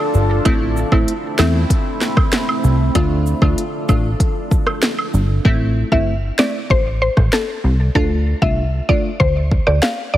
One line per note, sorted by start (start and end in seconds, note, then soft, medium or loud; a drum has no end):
0.00 0.43 D3 medium
0.00 0.43 D4 medium
0.00 0.43 F4 medium
0.00 0.27 A4 medium
0.00 0.43 A4 medium
0.14 0.40 G1 medium
0.14 cabasa medium
0.45 0.84 A1 loud
0.45 0.88 A3 loud
0.45 2.93 A3 medium
0.45 0.88 C4 medium
0.45 2.93 C4 medium
0.45 2.93 E4 loud
0.45 0.89 E4 loud
0.45 kick loud
0.45 closed hi-hat medium
0.45 high woodblock medium
0.77 cabasa medium
0.92 1.05 A1 medium
0.92 1.13 A3 medium
0.92 1.13 C4 medium
0.92 1.13 E4 medium
0.92 kick loud
0.92 high woodblock medium
1.08 closed hi-hat medium
1.39 1.65 E2 loud
1.39 1.60 A3 medium
1.39 1.60 C4 medium
1.39 1.60 E4 medium
1.39 snare loud
1.39 cabasa medium
1.39 high woodblock medium
1.70 kick medium
1.70 closed hi-hat medium
2.01 snare medium
2.01 cabasa medium
2.17 kick loud
2.17 cross-stick medium
2.17 high woodblock medium
2.33 snare loud
2.33 closed hi-hat medium
2.49 high woodblock medium
2.64 2.90 C2 medium
2.64 cabasa medium
2.95 3.34 D2 loud
2.95 5.43 D3 medium
2.95 3.38 A3 loud
2.95 5.43 D4 medium
2.95 3.38 D4 medium
2.95 5.43 F4 medium
2.95 3.39 F4 loud
2.95 5.43 A4 loud
2.95 kick loud
2.95 closed hi-hat medium
2.95 high woodblock medium
3.26 cabasa medium
3.42 3.55 D2 medium
3.42 3.63 A3 medium
3.42 3.63 D4 medium
3.42 3.63 F4 medium
3.42 kick loud
3.42 high woodblock medium
3.58 closed hi-hat medium
3.89 4.15 A1 loud
3.89 4.10 A3 medium
3.89 4.10 D4 medium
3.89 4.10 F4 medium
3.89 kick loud
3.89 cabasa medium
3.89 high woodblock medium
4.20 kick medium
4.20 closed hi-hat medium
4.51 kick medium
4.51 cabasa medium
4.67 cross-stick medium
4.67 high woodblock medium
4.83 snare loud
4.83 closed hi-hat medium
4.99 high woodblock medium
5.14 5.40 G1 medium
5.14 cabasa medium
5.45 5.84 A1 loud
5.45 5.88 A3 loud
5.45 5.88 C4 medium
5.45 5.88 E4 loud
5.45 kick loud
5.92 6.31 G1 medium
5.92 6.13 A3 medium
5.92 6.13 C4 medium
5.92 6.13 E4 medium
5.92 6.03 E5 medium
5.92 kick loud
6.39 6.60 A3 medium
6.39 6.60 C4 medium
6.39 6.60 E4 medium
6.39 6.50 D5 medium
6.39 snare loud
6.70 7.09 A1 loud
6.70 6.81 C5 medium
6.70 kick medium
7.02 7.12 C5 medium
7.17 7.30 A1 loud
7.17 kick medium
7.17 cross-stick medium
7.33 7.77 A4 medium
7.33 snare loud
7.64 7.90 C2 medium
7.95 8.34 D2 loud
7.95 8.38 A3 loud
7.95 8.38 D4 medium
7.95 8.39 F4 loud
7.95 8.06 A4 loud
7.95 kick loud
8.42 8.81 C2 medium
8.42 8.63 A3 medium
8.42 8.63 D4 medium
8.42 8.63 F4 medium
8.42 8.53 E5 medium
8.42 kick loud
8.89 9.10 A3 medium
8.89 9.10 D4 medium
8.89 9.10 F4 medium
8.89 9.00 D5 medium
8.89 kick loud
9.20 9.59 D2 medium
9.20 9.31 C5 medium
9.20 kick medium
9.52 kick medium
9.67 9.80 D2 loud
9.67 9.78 D5 medium
9.67 cross-stick medium
9.82 9.93 F5 medium
9.82 snare loud
10.14 10.18 G1 medium
10.14 10.18 D5 medium